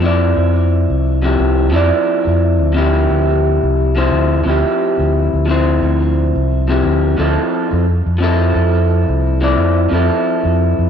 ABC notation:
X:1
M:4/4
L:1/16
Q:"Swing 16ths" 1/4=88
K:Dm
V:1 name="Clean electric guitar"
[F,CEd]6- [F,CEd] [F,CEG]3 [F,CEd]6 | [F,CEG]6- [F,CEG] [F,CEc]3 [F,CEG]6 | [F,CEc]6- [F,CEc] [F,CEG]3 [F,CEA]4 z2 | [F,CEA]6- [F,CEA] [F,CEd]3 [F,CEA]6 |]
V:2 name="Fingered electric bass" clef=bass
F,,2 F,,3 C,,3 C,,2 F,, z2 F,,2 D,,- | D,,2 D,,3 C,,3 D,,2 D,, z2 D,,2 D,,- | D,,2 D,,3 C,,3 D,,2 D,, z2 F,,2 F,,- | F,,2 F,,3 C,,3 F,,2 F,, z2 F,,2 F,, |]